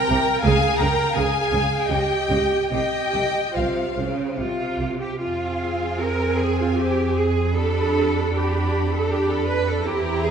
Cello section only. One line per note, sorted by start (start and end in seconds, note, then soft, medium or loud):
0.10 0.18 C3 medium
0.44 0.52 C#3 medium
0.80 0.88 C#3 medium
1.16 1.24 C#3 medium
1.52 1.60 C#3 medium
1.90 1.98 C#3 medium
2.29 2.37 C#3 medium
2.71 2.79 C3 medium
3.14 3.22 C3 medium
3.56 3.94 C3 medium
3.96 4.36 C#3 medium
4.38 5.20 C3 medium
4.38 4.96 F4 medium
5.01 5.20 G4 medium
5.20 5.99 F4 medium
6.01 6.40 A#4 medium
6.40 6.59 G#4 medium
6.60 6.79 F4 medium
6.79 7.17 G4 medium
7.17 7.56 G#4 medium
7.57 8.34 A4 medium
8.35 8.92 G4 medium
8.93 9.11 A4 medium
9.11 9.29 G4 medium
9.30 9.48 A4 medium
9.48 9.66 B4 medium
9.68 9.86 A4 medium
9.85 10.23 G4 medium
10.22 10.31 G#4 medium